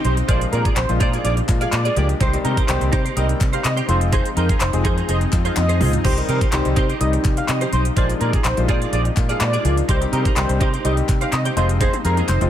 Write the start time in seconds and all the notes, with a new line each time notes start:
Already playing: C3 C4 D#4 G4, impact
0.04 B1 D#4 G4 C5, closed hi-hat
0.17 muted clean electric guitar stroke, closed hi-hat
0.28 A#1 F3 G#3 A#3 D4 F4 G#4 C5 D5, kick, closed hi-hat
0.41 closed hi-hat
0.52 A#2 F4 G#4 A#4 D5, closed hi-hat
0.65 F4 G#4 D5, kick, closed hi-hat
0.76 A#1 C5, muted clean electric guitar stroke, clap, closed hi-hat
0.89 A#1 F3 G#3 A#3 D4 F4, muted clean electric guitar stroke, closed hi-hat
1.00 A#2 F4 G#4 C5 D5, kick, closed hi-hat
1.13 F4 G#4 D5, closed hi-hat
1.24 A#1 F4 G#4 D5, closed hi-hat
1.37 muted clean electric guitar stroke, closed hi-hat
1.48 A#2 F3 G#3 A#3 D4 F4, muted clean electric guitar stroke, kick, clap, closed hi-hat
1.61 F4 G#4 D5 F5, closed hi-hat
1.72 A#2 D5, muted clean electric guitar stroke, clap, closed hi-hat
1.85 F4 G#4 D5, closed hi-hat
1.96 C#2 F3 G#3 A#3 D4 F4 G4 G#4 D5, closed hi-hat
2.09 muted clean electric guitar stroke, closed hi-hat
2.20 C2 C3 D#3 G3 C4 D#4 G4 C5, kick, closed hi-hat
2.33 D#3 G3 C4 D#4 G4, closed hi-hat
2.44 C3 D#4 G4 A#4 C5, closed hi-hat
2.57 D#4 G4 C5, kick, closed hi-hat
2.68 C2 D#3 G3 C4 D#4 G4 C5, muted clean electric guitar stroke, clap, closed hi-hat
2.81 C2, muted clean electric guitar stroke, closed hi-hat
2.92 C3 D#4 G4 C5, kick, closed hi-hat
3.05 D#4 G4 C5, closed hi-hat
3.16 C2 D#3 G3 C4 D#4 G4 A#4 C5 D#5, closed hi-hat
3.29 muted clean electric guitar stroke, closed hi-hat
3.40 C3, muted clean electric guitar stroke, kick, clap, closed hi-hat
3.53 D#4 G4 C5 F5, closed hi-hat
3.64 C3 D#5, muted clean electric guitar stroke, clap, closed hi-hat
3.77 D#4 G4 C5, closed hi-hat
3.88 F1 F3 G#3 C4 D#4 F4 G#4 C5, closed hi-hat
4.01 muted clean electric guitar stroke, closed hi-hat
4.12 D#4 G#4 C5, kick, closed hi-hat
4.25 closed hi-hat
4.36 F2 D#4 G#4 A#4 C5, closed hi-hat
4.49 D#4 G#4 C5, kick, closed hi-hat
4.60 F1 C5, muted clean electric guitar stroke, clap, closed hi-hat
4.73 F1 F3 G#3 C4 D#4 G#4, muted clean electric guitar stroke, closed hi-hat
4.84 F2 D#4 G#4 C5, kick, closed hi-hat
4.97 D#4 G#4 C5, closed hi-hat
5.08 F1 D#4 G#4 C5 D#5, closed hi-hat
5.21 muted clean electric guitar stroke, closed hi-hat
5.32 F2 F3 G#3 C4 D#4 F4, muted clean electric guitar stroke, kick, clap, closed hi-hat
5.45 D#4 G#4 C5 F5, closed hi-hat
5.56 F2 D#5, muted clean electric guitar stroke, clap, closed hi-hat, high tom
5.69 D#4 G#4 C5, closed hi-hat
5.80 C#2 F3 G#3 C4 D#4 F4 G#4 C5, mid tom, open hi-hat
5.93 muted clean electric guitar stroke, closed hi-hat, floor tom
6.04 C2 C3 D#3 G3 C4 D#4 G4 C5, kick, crash
6.17 D#3 G3 C4 D#4 A#4, closed hi-hat
6.28 C3 D#4 G4 A#4 C5, closed hi-hat
6.41 D#4 G4 C5, kick, closed hi-hat
6.52 C2 D#3 G3 C4 D#4 G4 C5, muted clean electric guitar stroke, clap, closed hi-hat
6.65 C2, muted clean electric guitar stroke, closed hi-hat
6.76 C3 D#4 G4 C5, kick, closed hi-hat
6.89 D#4 G4 C5, closed hi-hat
7.00 C2 D#3 G3 C4 D#4 G4 D#5, muted clean electric guitar stroke, closed hi-hat
7.13 muted clean electric guitar stroke, closed hi-hat
7.25 C3, kick, clap, closed hi-hat
7.37 F5, muted clean electric guitar stroke, closed hi-hat
7.49 C3 D#5, muted clean electric guitar stroke, clap, closed hi-hat
7.61 D#4 G4 C5, closed hi-hat
7.72 B1 D#4 G4 C5, closed hi-hat
7.85 muted clean electric guitar stroke, closed hi-hat
7.96 A#1 F3 G#3 A#3 D4 F4 G#4 C5 D5, kick, closed hi-hat
8.10 closed hi-hat
8.20 A#2 F4 G#4 A#4 D5, closed hi-hat
8.33 F4 G#4 D5, kick, closed hi-hat
8.44 A#1 C5, muted clean electric guitar stroke, clap, closed hi-hat
8.57 A#1 F3 G#3 A#3 D4 F4, muted clean electric guitar stroke, closed hi-hat
8.68 A#2 F4 G#4 C5 D5, kick, closed hi-hat
8.81 F4 G#4 D5, closed hi-hat
8.92 A#1 F4 G#4 D5, closed hi-hat
9.05 muted clean electric guitar stroke, closed hi-hat
9.17 A#2 F3 G#3 A#3 D4 F4, muted clean electric guitar stroke, kick, clap, closed hi-hat
9.29 F4 G#4 D5 F5, closed hi-hat
9.40 A#2 D5, muted clean electric guitar stroke, clap, closed hi-hat
9.53 F4 G#4 D5, closed hi-hat
9.64 C#2 F3 G#3 A#3 D4 F4 G#4 D5, closed hi-hat
9.77 muted clean electric guitar stroke, closed hi-hat
9.88 C2 C3 D#3 G3 C4 D#4 G4 C5, kick, closed hi-hat
10.01 D#3 G3 C4 D#4 G4, closed hi-hat
10.12 C3 D#4 G4 A#4 C5, closed hi-hat
10.25 D#4 G4 C5, kick, closed hi-hat
10.36 C2 D#3 G3 C4 D#4 G4 C5, muted clean electric guitar stroke, clap, closed hi-hat
10.49 C2, muted clean electric guitar stroke, closed hi-hat
10.60 C3 D#4 G4 C5, kick, closed hi-hat
10.73 D#4 G4 C5, closed hi-hat
10.84 C2 D#3 G3 C4 D#4 G4 C5 D#5, closed hi-hat
10.97 muted clean electric guitar stroke, closed hi-hat
11.08 C3, muted clean electric guitar stroke, kick, clap, closed hi-hat
11.21 D#4 G4 C5 F5, closed hi-hat
11.33 C3 D#5, clap, closed hi-hat
11.45 D#4 G4 C5, closed hi-hat
11.56 F1 F3 G#3 C4 D#4 F4 G#4 C5, closed hi-hat
11.69 muted clean electric guitar stroke, closed hi-hat
11.80 D#4 G#4 C5, kick, closed hi-hat, high tom
11.93 closed hi-hat, high tom
12.04 F2 D#4 G#4 A#4 C5, closed hi-hat
12.17 D#4 G#4 C5, closed hi-hat, high tom
12.28 F1 C5, muted clean electric guitar stroke, clap, closed hi-hat, mid tom
12.41 F1 F3 G#3 C4 D#4 F4, muted clean electric guitar stroke, closed hi-hat